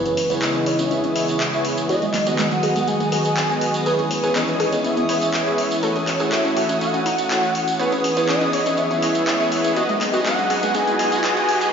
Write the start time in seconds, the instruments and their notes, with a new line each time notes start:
Already playing: analog synth pad C#3 E3 G#3 B3 E4, analog synth lead B4, synth texture D#6
0.06 synth arpeggio sound C#4, closed hi-hat, tambourine
0.17 synth arpeggio sound C#4, open hi-hat
0.30 supersaw synth B3 E4 G#4 C#5, synth arpeggio sound B4, closed hi-hat, tambourine
0.42 synth arpeggio sound C#4, analog synth lead D#5, clap, closed hi-hat, tambourine
0.55 synth arpeggio sound C#4, closed hi-hat, tambourine
0.66 supersaw synth B3 E4 G#4 C#5, synth arpeggio sound C#5, open hi-hat
0.79 synth arpeggio sound C#4, closed hi-hat, tambourine
0.91 synth arpeggio sound C#4, analog synth lead E5, closed hi-hat, tambourine
1.04 synth arpeggio sound C#4, closed hi-hat, tambourine
1.16 supersaw synth B3 E4 G#4 C#5, synth arpeggio sound D#5, open hi-hat
1.28 closed hi-hat, tambourine
1.40 clap, closed hi-hat, tambourine
1.53 supersaw synth B3 E4 G#4 C#5, closed hi-hat, tambourine
1.65 open hi-hat
1.77 closed hi-hat, tambourine
1.89 analog synth pad D#3 F#3 F#4, supersaw synth B3 F#4 G#4 D#5, synth arpeggio sound F#4, analog synth lead D#5, closed hi-hat, tambourine
2.02 synth arpeggio sound G#3, closed hi-hat, tambourine
2.14 synth arpeggio sound G#3, clap, open hi-hat
2.26 supersaw synth B3 F#4 G#4 D#5, synth arpeggio sound F#4, closed hi-hat, tambourine
2.39 synth arpeggio sound G#3, analog synth lead F#5, clap, closed hi-hat, tambourine
2.51 synth arpeggio sound G#3, closed hi-hat, tambourine
2.63 supersaw synth B3 F#4 G#4 D#5, synth arpeggio sound G#4, open hi-hat
2.76 synth arpeggio sound G#3, closed hi-hat, tambourine
2.88 synth arpeggio sound G#3, analog synth lead G#5, closed hi-hat, tambourine
3.00 synth arpeggio sound G#3, closed hi-hat, tambourine
3.12 supersaw synth B3 F#4 G#4 D#5, synth arpeggio sound G#4, open hi-hat
3.25 closed hi-hat, tambourine
3.37 clap, closed hi-hat, tambourine
3.50 supersaw synth B3 F#4 G#4 D#5, closed hi-hat, tambourine
3.61 open hi-hat
3.74 closed hi-hat, tambourine
3.86 analog synth pad E3 C#4 G#4, supersaw synth B3 E4 G#4 C#5, synth arpeggio sound G#4, analog synth lead B4, closed hi-hat, tambourine
3.99 synth arpeggio sound B3, closed hi-hat, tambourine
4.11 synth arpeggio sound B3, open hi-hat
4.23 supersaw synth B3 E4 G#4 C#5, synth arpeggio sound G#4, closed hi-hat, tambourine
4.35 synth arpeggio sound B3, analog synth lead D#5, clap, closed hi-hat, tambourine
4.48 synth arpeggio sound B3, closed hi-hat, tambourine
4.60 supersaw synth B3 E4 G#4 C#5, synth arpeggio sound G#4, open hi-hat
4.72 synth arpeggio sound B3, closed hi-hat, tambourine
4.84 synth arpeggio sound B3, analog synth lead E5, closed hi-hat, tambourine
4.97 synth arpeggio sound B3, closed hi-hat, tambourine
5.09 supersaw synth B3 E4 G#4 C#5, synth arpeggio sound B4, open hi-hat
5.21 closed hi-hat, tambourine
5.34 clap, closed hi-hat, tambourine
5.46 supersaw synth B3 E4 G#4 C#5, closed hi-hat, tambourine
5.58 open hi-hat
5.71 closed hi-hat, tambourine
5.83 analog synth pad A3 C#4 F#4 A4, supersaw synth A3 E4 F#4 C#5, synth arpeggio sound A4, analog synth lead C#5, closed hi-hat, tambourine
5.96 synth arpeggio sound C#4, closed hi-hat, tambourine
6.07 synth arpeggio sound C#4, clap, open hi-hat
6.20 supersaw synth A3 E4 F#4 C#5, synth arpeggio sound G#4, closed hi-hat, tambourine
6.32 synth arpeggio sound C#4, analog synth lead E5, clap, closed hi-hat, tambourine
6.45 synth arpeggio sound C#4, closed hi-hat, tambourine
6.57 supersaw synth A3 E4 F#4 C#5, synth arpeggio sound F#4, open hi-hat
6.69 synth arpeggio sound C#4, closed hi-hat, tambourine
6.81 synth arpeggio sound C#4, analog synth lead F#5, closed hi-hat, tambourine
6.94 synth arpeggio sound C#4, closed hi-hat, tambourine
7.06 synth arpeggio sound D#4, open hi-hat
7.18 closed hi-hat, tambourine
7.30 supersaw synth A3 E4 F#4 C#5, clap, closed hi-hat, tambourine
7.43 closed hi-hat, tambourine
7.55 open hi-hat
7.68 closed hi-hat, tambourine
7.79 analog synth pad E3 B3 G#4 B4, supersaw synth B3 E4 G#4 C#5, synth arpeggio sound B4, analog synth lead B4, closed hi-hat, tambourine, riser
7.92 synth arpeggio sound C#4, closed hi-hat, tambourine
8.04 synth arpeggio sound C#4, open hi-hat
8.17 supersaw synth B3 E4 G#4 C#5, synth arpeggio sound B4, closed hi-hat, tambourine
8.29 synth arpeggio sound C#4, analog synth lead D#5, clap, closed hi-hat, tambourine
8.41 synth arpeggio sound C#4, closed hi-hat, tambourine
8.53 supersaw synth B3 E4 G#4 C#5, synth arpeggio sound C#5, open hi-hat
8.66 synth arpeggio sound C#4, closed hi-hat, tambourine
8.77 synth arpeggio sound C#4, analog synth lead E5, closed hi-hat, tambourine
8.91 synth arpeggio sound C#4, closed hi-hat, tambourine
9.02 supersaw synth B3 E4 G#4 C#5, synth arpeggio sound D#5, open hi-hat
9.15 closed hi-hat, tambourine
9.27 clap, closed hi-hat, tambourine
9.40 supersaw synth B3 E4 G#4 C#5, closed hi-hat, tambourine
9.52 open hi-hat
9.64 closed hi-hat, tambourine
9.76 analog synth pad F#3 D#4 G#4, supersaw synth B3 F#4 G#4 D#5, synth arpeggio sound F#4, analog synth lead D#5, closed hi-hat, tambourine
9.89 synth arpeggio sound G#3, closed hi-hat, tambourine
10.01 synth arpeggio sound G#3, clap, open hi-hat
10.13 supersaw synth B3 F#4 G#4 D#5, synth arpeggio sound F#4, closed hi-hat, tambourine
10.25 synth arpeggio sound G#3, analog synth lead F#5, clap, closed hi-hat, tambourine
10.38 synth arpeggio sound G#3, closed hi-hat, tambourine
10.50 supersaw synth B3 F#4 G#4 D#5, synth arpeggio sound G#4, open hi-hat
10.63 synth arpeggio sound G#3, closed hi-hat, tambourine
10.74 synth arpeggio sound G#3, analog synth lead G#5, closed hi-hat, tambourine
10.87 synth arpeggio sound G#3, closed hi-hat, tambourine
10.99 supersaw synth B3 F#4 G#4 D#5, synth arpeggio sound G#4, open hi-hat
11.12 closed hi-hat, tambourine
11.24 clap, closed hi-hat, tambourine
11.37 supersaw synth B3 F#4 G#4 D#5, closed hi-hat, tambourine
11.49 open hi-hat
11.61 closed hi-hat, tambourine